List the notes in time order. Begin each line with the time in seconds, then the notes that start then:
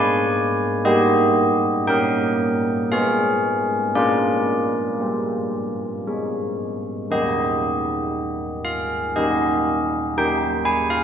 Already playing: G#3 D5 G#5
0.85 G3 G4 D#5
1.87 A#3 A#4 G5
2.92 G#3 G#4 F5
3.95 A#3 F4 D5
5.00 G3
6.08 G#3
7.11 D#3 A#3 G4 D#5
8.65 F5
9.16 D#3 A#3 G4 D#5
10.18 D#3 A#3 G4 G5
10.65 G#5
10.90 F5